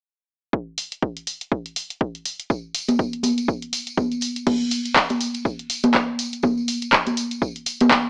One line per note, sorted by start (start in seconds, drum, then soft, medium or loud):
0.53 kick loud
0.78 open hi-hat loud
0.92 closed hi-hat medium
1.02 kick loud
1.17 closed hi-hat soft
1.27 open hi-hat loud
1.41 closed hi-hat medium
1.52 kick loud
1.66 closed hi-hat medium
1.76 open hi-hat loud
1.90 closed hi-hat medium
2.01 kick loud
2.15 closed hi-hat soft
2.25 open hi-hat loud
2.40 closed hi-hat medium
2.50 kick loud
2.50 tambourine soft
2.75 open hi-hat loud
2.75 tambourine medium
2.88 closed hi-hat medium
2.88 tambourine soft
2.88 high conga medium
2.99 kick loud
2.99 tambourine soft
3.13 closed hi-hat medium
3.23 open hi-hat loud
3.23 tambourine medium
3.23 high conga medium
3.38 closed hi-hat medium
3.38 tambourine soft
3.48 kick loud
3.48 tambourine soft
3.62 closed hi-hat medium
3.73 open hi-hat loud
3.73 tambourine medium
3.87 closed hi-hat medium
3.87 tambourine soft
3.98 kick loud
3.98 tambourine medium
3.98 high conga medium
4.12 closed hi-hat soft
4.12 tambourine soft
4.21 open hi-hat loud
4.21 tambourine medium
4.36 closed hi-hat medium
4.36 tambourine soft
4.47 kick loud
4.47 crash medium
4.47 tambourine soft
4.47 high conga loud
4.61 tambourine soft
4.71 open hi-hat loud
4.71 tambourine medium
4.85 closed hi-hat medium
4.85 tambourine soft
4.95 kick loud
4.95 clap loud
4.95 tambourine medium
5.09 closed hi-hat medium
5.09 tambourine soft
5.09 high conga medium
5.20 open hi-hat loud
5.20 tambourine medium
5.34 closed hi-hat medium
5.34 tambourine soft
5.45 kick loud
5.45 tambourine soft
5.59 closed hi-hat medium
5.70 open hi-hat loud
5.70 tambourine medium
5.83 closed hi-hat medium
5.83 tambourine soft
5.83 high conga loud
5.94 kick loud
5.94 clap loud
5.94 tambourine soft
6.19 open hi-hat loud
6.19 tambourine medium
6.33 closed hi-hat medium
6.33 tambourine soft
6.43 kick loud
6.43 tambourine medium
6.43 high conga medium
6.57 tambourine soft
6.68 open hi-hat loud
6.68 tambourine medium
6.82 closed hi-hat medium
6.82 tambourine soft
6.93 kick loud
6.93 clap loud
6.93 tambourine medium
7.06 closed hi-hat medium
7.06 tambourine soft
7.06 high conga medium
7.17 open hi-hat loud
7.17 tambourine loud
7.31 closed hi-hat medium
7.31 tambourine soft
7.42 kick loud
7.42 tambourine medium
7.56 closed hi-hat medium
7.66 open hi-hat loud
7.66 tambourine medium
7.81 closed hi-hat medium
7.81 tambourine soft
7.81 high conga loud
7.91 kick loud
7.91 clap loud
7.91 tambourine soft